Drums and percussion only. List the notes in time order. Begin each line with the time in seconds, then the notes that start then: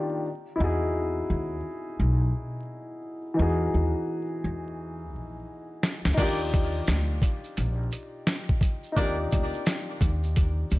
5.83 snare
6.05 snare
6.18 kick, closed hi-hat, crash, shaker
6.52 kick, closed hi-hat, shaker
6.74 shaker
6.86 snare, closed hi-hat, shaker
7.22 kick, closed hi-hat, shaker
7.44 shaker
7.57 closed hi-hat, shaker
7.92 closed hi-hat, shaker
8.27 snare, closed hi-hat, shaker
8.49 kick
8.61 kick, closed hi-hat, shaker
8.84 shaker
8.97 kick, closed hi-hat, shaker
9.31 kick, closed hi-hat, shaker
9.53 shaker
9.66 snare, closed hi-hat, shaker
10.01 kick, closed hi-hat, shaker
10.23 shaker
10.36 kick, closed hi-hat, shaker
10.71 closed hi-hat, shaker